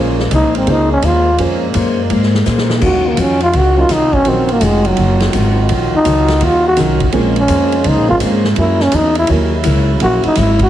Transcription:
Already playing: A#1 A#2 G#3 A#3 C#4 F4 G#4 C5
0.19 snare
0.31 C2 A#3 C#4 D#4 G#4 C5, hi-hat pedal, ride
0.43 A#1
0.55 G#1 C4, ride
0.67 C#2 A#3 C#4 D#4 F4 G#4 C5, ride
0.92 C#4
1.02 D#2 A#3 C#4 F4 G#4 C5, hi-hat pedal, ride
1.38 F2 A#3 C#4 F4 G#4 C5, ride
1.74 F#2 A#3 C#4 G#4 C5, hi-hat pedal, ride
2.10 G#2 A#3 C#4 G#4 C5, ride
2.23 snare
2.35 snare
2.46 A#2 A#3 C#4 G#4 C5, snare, hi-hat pedal
2.58 snare
2.70 snare
2.81 D#2 D#3 F#3 C#4 D#4 F4 F#4 A#4, kick, crash
3.08 A#3
3.17 F2 D#3 F#3 C#4 F4, hi-hat pedal, ride
3.40 F4, ride
3.53 C#2 D#3 F#3 C#4 F4 F#4, ride
3.77 F#3 C#4 D#4 F4 A#4
3.89 C2 D#3 F#3 C#4 D#4 F4, snare, hi-hat pedal, ride
4.13 C#4, kick
4.25 A#1 D#3 F#3 C4 C#4 D#4 F4 A#4, ride
4.49 A#3, ride
4.61 F1 D#3 F#3 G#3 C#4 F4, hi-hat pedal, ride
4.85 F#3, ride
4.97 F#1 D#3 F#3 C#4 F4, ride
5.20 snare, ride
5.33 G#1 D#3 F#3 C#4 F4, hi-hat pedal, ride
5.69 A#1 D#3 F#3 C#4 F4, ride
5.94 D#4, muted upright bass stroke
6.04 C#2 D#3 F#3 C#4 D#4 F4 A#4, hi-hat pedal, ride
6.28 snare, ride
6.40 D#2 D#3 F#3 C#4 F4, ride
6.45 F4
6.68 F#4
6.76 C2 D#3 F#3 C#4 D#4 F4 A#4, snare, hi-hat pedal, ride
7.00 kick, ride
7.12 A#1 C#3 G#3 A#3 C4 C#4 F4 G#4 A#4 C5, ride
7.36 C#4, ride
7.48 F2 A#3 C#4 G#4 C5, hi-hat pedal, ride
7.72 ride
7.84 C#2 A#3 C#4 G#4 C5, ride
7.88 D#4
7.97 A#1
8.08 G#1 G#3 C4 C#4 F4 A#4
8.20 G#2 A#3 C#4 G#4 C5, hi-hat pedal, ride
8.44 snare
8.55 F#2 C#3 F#3 A#3 C#4 E4 A#4, ride
8.59 E4 A#4
8.80 C#4, snare
8.92 E2 F#3 C#4 D#4 E4 A#4, hi-hat pedal, ride
9.15 E4, ride
9.27 D#2 F#3 A#3 C#4 E4 A#4, ride
9.64 C#2 F#3 C#4 E4 A#4, hi-hat pedal, ride
10.00 A#1 F#3 A#3 C#4 E4 F#4 A#4, ride
10.23 D#4, muted upright bass stroke, ride
10.35 G#1 F#3 C#4 E4 A#4, snare, hi-hat pedal, ride
10.39 E4
10.59 F#4, kick, ride

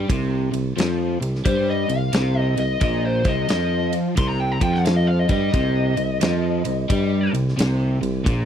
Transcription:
0.08 C2 C3, kick, ride
0.52 C2 C3, ride
0.76 F2 F3, snare, ride
1.21 C2 C3, ride
1.35 snare
1.45 G2 G3 C5, kick, ride
1.70 D#5
1.89 C2 C3 F5, ride
2.13 C2 C3, snare, ride
2.38 D#5
2.57 C2 C3 D#5, ride
2.81 A#1 A#2 D#5, kick, ride
3.05 C5
3.24 C2 C3, kick, ride
3.29 D#5
3.49 F2 F3 D#5, snare, ride
3.93 ride
4.17 C2 C3 C6, kick, ride
4.29 A#5
4.40 G5
4.52 A#5
4.61 F2 F3 G5, kick, ride
4.73 F#5, snare
4.85 F5, snare, ride
4.96 D#5
5.07 F5
5.19 D#5
5.29 G2 G3 D#5, kick, ride
5.53 C2 C3, kick, ride
5.97 C2 C3, ride
6.21 F2 F3, snare, ride
6.65 C2 C3, ride
6.89 G2 G3, kick, ride
7.33 C2 C3, ride
7.49 snare
7.57 C2 C3, snare, ride
8.01 C2 C3, ride
8.25 A#1 A#2, kick, ride

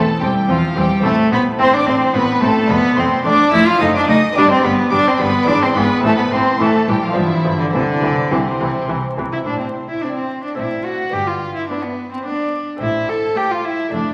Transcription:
Already playing: E2 C4 E4 G4 A4 A5
0.20 E1 E2 G3 C4 G4 G5
0.48 E1 E2 F3 C4 F4 F5
0.75 E1 E2 G3 C4 G4 G5
1.00 A2 A3 C4 E4 A4
1.05 A1 A2 A4 A5
1.31 A1 A2 B3 C4 B4 B5
1.58 A1 A2 C4 C5 C6
1.74 D4 D5 D6
1.86 A1 A2 C4 C5 C6
2.13 A1 A2 B3 C4 B4 B5
2.41 A1 A2 A3 C4 A4 A5
2.65 F2 A3 D4 A4 B4
2.69 F1 F2 A3 B3 B5
2.97 F1 F2 A3 C4 C5 C6
3.24 F1 F2 A3 D4 D5 D6
3.51 F1 F2 A3 E4 E5 E6
3.66 F4 F5 F6
3.77 F#2 A3 C4 A4 D#5 D#6
3.81 F#1 F#2 A3 D#4
3.95 D4 D5 D6
4.07 F#1 F#2 A3 D#4 D#5 D#6
4.32 G2 B3 D4 G4 D5 D6
4.36 G1 G2 G3 D4
4.49 C4 C5 C6
4.62 G1 G2 G3 B3 B4 B5
4.90 G1 G2 G3 D4 D5 D6
5.05 C4 C5 C6
5.18 G1 G2 G3 B3 B4 B5
5.43 B3 D4 E4 D6
5.47 G#1 G#2 E3 D4 D5
5.61 C4 C5 C6
5.74 G#1 G#2 E3 B3 B4 B5
5.99 A3 C4 E4
6.03 A1 A2 E3 A3 A4 A5
6.17 B3 B4 B5
6.31 A1 A2 E3 C4 C5 C6
6.59 A1 A2 E3 A3 A4 A5
6.87 A1 A2 E3 G3 G4 G5
7.03 F3 F4 F5
7.11 B3 D4 F4
7.15 G1 G2 E3 F3 E4 E5
7.44 G1 G2 F3
7.58 D3 D4 D5
7.70 C2 C3 D3 E3 C4 E4 D5
7.75 D4
8.02 C2 C3 E3
8.31 C2 C3 E3 C4 C5
8.60 C2 C3 E3
8.89 C2 C3 E3
9.18 C2 C3 E3
9.33 E4 E5
9.43 A2 A3 C4 D4 E4
9.47 A1 A2 D5
9.59 C4 C5
9.88 E4 E5
10.02 C4 D4 D5 E5
10.15 C4 C5
10.44 D4 D5
10.55 A2 A3 C4 D4 E4
10.59 A1 A2 C4 D5 E5
10.84 F#4 F#5
11.10 B3 D4 G4
11.14 G1 G2 G5
11.27 F4 F5
11.55 E4 E5
11.69 B3 D4 D5
11.82 B3 B4
12.12 C4 C5
12.25 B3 D4 D5
12.76 A3 C4
12.81 A1 A2 E4 E5
13.08 A4 A5
13.36 A3 G4 C5 G5
13.51 F4 F5
13.65 E4 E5
13.89 F2 A3 D4 D5
13.93 F1 F2 A3 D4 D5

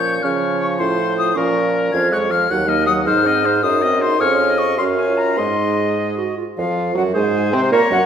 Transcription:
Already playing: A#2 F3 C#4 C#5 G6
0.22 C#3 F3 C#4 C#5 F6
0.60 C#6
0.78 A2 F4 C5 C6
1.18 D#6
1.35 A#2 F3 C#4 A#4 C#6
1.92 F2 F3 F4 F5 G#6
2.12 G#3 G#4 C#5 F#6
2.30 F3 F4 F5 F6
2.49 D#2 F#3 F#4 F#5 F#6
2.67 A#3 D#4 D#5 F6
2.86 F#3 F#4 F#5 D#6
3.04 G#2 D#4 G#4 C5 F6
3.23 C4 C5
3.27 D#5
3.43 D#4 G#4 C5
3.62 F#2 D#4 G#4 C5 D#6
3.80 C4 F#4 D#5
3.99 D#4 G#4 C5 C6
4.18 F2 C#4 G#4 C#5 F6
4.49 D#5
4.58 C#6
4.77 F#2 C#4 F#4 F5 C6
4.96 G#5
5.07 F4
5.17 A#5
5.37 G#2 G#3 D#4 D#5 C6
5.97 G#4
6.17 F#4
6.37 F4
6.57 F2 F3 F4 F5
6.95 F#2 F#3 F#4 F#5
7.14 G#2 G#3 G#4 C5 G#5
7.52 C3 C4 C5 C6
7.71 A#2 A#3 A#4 C#5 A#5
7.90 F#2 F#3 F#4 F#5

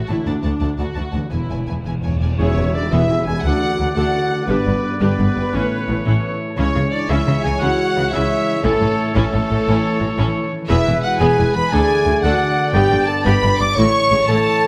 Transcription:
Already playing: A2 C#4 E4 A4
0.07 A1 A2 D3 E4 C#5 E5 A5
0.14 D4
0.19 F#4
0.23 D2 D4 A4 D5 A5
0.27 F#5
0.43 D2 D5 F#5 A5
0.60 D2 D5 F#5 A5
0.78 D2 F#4 D5 F#5 A5
0.95 D2 D5 F#5 A5
1.13 D2 E3 D5 F#5 A5
1.19 B3
1.24 E4
1.28 E1 E2 E4 G#4 B4 E5 G#5
1.47 E1 E2 B4 E5 G#5
1.56 E2
1.64 E1 E2 G#5
1.68 E2 B4 E5
1.78 E2
1.85 E1 E2 B4 G#5
1.93 E2
2.01 E1 E2 C#5 G#5
2.08 E2
2.15 E2
2.21 E1 E2 D5 G#5
2.38 E1 E2 B2 E3 G#3 B3 C#4 G#4 C#5 E5, tam-tam
2.49 B3
2.57 E1 E2 G#3 E4
2.67 G#4
2.74 D4 B4 D5
2.85 E5
2.90 E1 E2 B2 G#3 B3 E4 G#4 E5 G#5
3.01 B5
3.09 E1 E2 G#3 E4 G#5
3.17 C#3 B5
3.25 E1 E2 E3 B3 G#4 G#5
3.36 B5
3.43 D2 D3 A3 D4 F#4 A4 D5 F#5
3.54 A3
3.62 D4
3.71 A4
3.78 D2 F#3 D4
3.88 D5
3.94 D2 D3 A3 D4 F#4 A4 D5 F#5 A5
3.98 F#5
4.05 D5
4.22 D5
4.31 A5
4.40 D5
4.48 G1 G2 D3 G3 B3 D4 G4 B4 D5
4.57 D3
4.66 G1 G2 B3 D4
4.75 G4
4.84 B4
4.93 D5
5.00 G1 G2 D3 G3 B3 D4 G4 B4 D5 G5
5.11 B5
5.19 G1 G2 B3 D4 G5
5.28 B5
5.36 G1 G2 G3 B3 G5
5.45 B5
5.53 A1 A2 E3 A3 C#4 E4 C#5
5.63 E3
5.71 C#4
5.80 E4
5.88 A1 A2 E3 A3 A4
5.98 C#5
6.05 A1 A2 C#4 E4 E5
6.15 A5
6.24 E5
6.33 A5
6.41 E5
6.50 A5
6.57 C#2 C#3 E3 G#3 C#4 E4 C#5
6.68 G#3
6.74 C#2 C#3 G#3 C#4
6.85 E4
6.91 D4 G#4 D5
7.08 C#2 C#3 E3 G#3 C#4 E4 C#5 E5
7.19 G#5
7.27 C#2 C#3 G#3 C#4 E5
7.36 G#5
7.43 C#2 C#3 E3 G#3 G#4 E5 G#5
7.53 G#5
7.60 C#2 C#3 C#4 E4 F#4 E5 F#5
7.70 G#5
7.78 E5
7.86 C#5
7.95 C#2 C#3 E3 G#3 G#4
8.04 E4
8.12 C#2 C#3 E3 G#3 C#4 E4 C#5 E5
8.21 G#3
8.30 C#4
8.39 G#3
8.48 C#4
8.56 G#3
8.63 A1 A2 E3 A3 C#4 E4 A4 C#5
8.73 E3
8.81 A1 A2 A3 C#4
8.90 E4
8.98 A4
9.06 C#5
9.14 A1 A2 E3 A3 C#4 E4 A4 C#5 E5
9.24 A5
9.32 A1 A2 A3 C#4
9.42 A5
9.49 A1 A2 E3 A3 E5
9.59 A5
9.67 A1 A2 C#4 E4 E5
9.84 E5
9.93 C#5
10.01 A1 A2 E3 A3 A4
10.11 E4
10.18 A1 A2 C#4 E4
10.27 E3
10.35 C#4
10.44 E3
10.53 C#4
10.61 E3
10.67 E1 E2 E3 G#3 B3 E4 G#4 B4 E5
10.86 E1 E2 G#3 E4
10.97 G#4
11.03 F#4 B4 F#5
11.13 E5
11.19 E1 E2 B3 G#4 G#5
11.31 B5
11.38 E1 E2 G#3 E4 G#5
11.47 B5
11.54 E1 E2 E3 B3 B4 G#5 B5
11.71 D2 D3 A3 D4 G#4 A4 D5 G#5
11.82 A3
11.90 D4
12.06 D2 F#3 D4
12.16 D5
12.23 D2 D4 A4 F#5 A5
12.27 F#4
12.33 D5
12.41 A5
12.50 D5
12.59 A5
12.67 D5
12.74 G1 G2 B3 G4 G5
12.90 G1 G2 G3 D4
13.01 G4
13.07 A4 B4 A5
13.18 D5
13.25 G1 G2 B3 G4 B4 G5 B5
13.42 G1 G2 G3 D4 G5
13.57 G1 G2 D3 B3 D5 G5 D6
13.62 D6
13.69 B5
13.75 A1 A2 E3 A3 E4 C#5 C#6
13.86 E3
13.95 C#4
14.03 E4
14.11 A1 A2 C#3 A3 A4
14.27 A1 A2 A3 E4 A4 E5 A5
14.46 E5

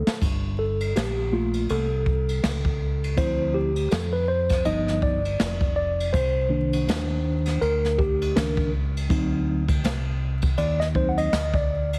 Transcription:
Already playing: A4
0.07 snare
0.22 G1, kick, ride
0.59 A4
0.80 ride
0.96 A#1 G4, snare, hi-hat pedal, ride
1.32 A3 A#3 F4
1.53 ride
1.69 C2 A4, ride
2.06 kick
2.29 ride
2.44 C#2, snare, hi-hat pedal, ride
2.65 kick
3.04 ride
3.16 D2 F3 C4 E4 C5, kick, ride
3.54 G4
3.76 ride
3.91 F2 A4, snare, hi-hat pedal, ride
4.13 B4
4.28 C5
4.49 kick, snare, ride
4.64 G1 F3 B3 D#4 D#5, ride
4.88 snare
5.02 D5, kick
5.25 ride
5.40 F1, snare, hi-hat pedal, ride
5.61 kick
5.76 D5
6.00 ride
6.13 C2 C5, kick, ride
6.49 D#3 A#3 D4
6.73 ride
6.87 D#2, snare, hi-hat pedal, ride
7.45 snare, ride
7.61 D2 A#4, ride
7.85 snare
7.98 G4, kick
8.22 ride
8.35 C#2 D#3 A#3 D4 A#4, snare, hi-hat pedal, ride
8.57 kick
8.97 ride
9.09 D2 F#3 C4 D#4, kick, ride
9.68 kick, ride
9.84 C2, snare, hi-hat pedal, ride
10.42 kick, ride
10.58 D#2 D5, ride
10.80 D#5, snare
10.95 F#3 C4 D#4 C5, kick
11.09 F#5
11.18 D#5, ride
11.32 D2, snare, hi-hat pedal, ride
11.54 D5, kick
11.93 ride

